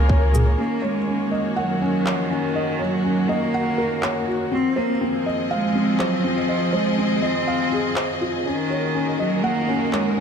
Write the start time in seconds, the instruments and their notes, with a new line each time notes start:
Already playing: sub bass C#2, string section C#3 A#3 F4 C#5, felt piano C#4 A#4 C#5 F5 G#5
0.09 felt piano C#5, kick
0.33 felt piano G#4, mid tom, shaker
0.57 string section D#3, cello A#3, felt piano C#4
0.82 cello G#3, felt piano C#5
0.87 string section F#4
1.07 felt piano C#4
1.31 felt piano D#5
1.56 cello F#3, felt piano F#5
1.82 felt piano C#4
2.06 cello F3, felt piano C#5, clap
2.30 cello D#3, felt piano C#4
2.55 felt piano D#5
2.79 cello F#3, felt piano C#5
3.04 felt piano C#4
3.29 cello A#3, felt piano D#5
3.54 felt piano F#5
3.78 felt piano A#4
4.03 felt piano C#5, clap
4.28 felt piano F#4
4.52 string section F3, felt piano C4, cello C4
4.60 string section C4
4.76 cello A#3, felt piano C5
4.94 string section G#4
5.01 felt piano C4
5.19 string section D#5
5.26 felt piano D#5
5.51 cello G#3, felt piano F5
5.75 felt piano C4
5.99 cello F#3, felt piano C5, clap
6.23 cello F3, felt piano C4
6.49 felt piano D#5
6.73 cello G#3, felt piano C5
6.98 felt piano C4
7.21 cello C4, felt piano D#5
7.48 felt piano F5
7.72 felt piano G#4
7.96 felt piano C5, clap
8.21 felt piano F4
8.45 string section D#3, cello D#3, felt piano C#4
8.55 string section F#4
8.65 string section A#3
8.70 felt piano C#5
8.95 felt piano C#4
9.05 string section A#4
9.19 cello F#3, felt piano D#5
9.44 cello A#3, felt piano F#5
9.68 felt piano C#4
9.93 cello G#3, felt piano C#5, clap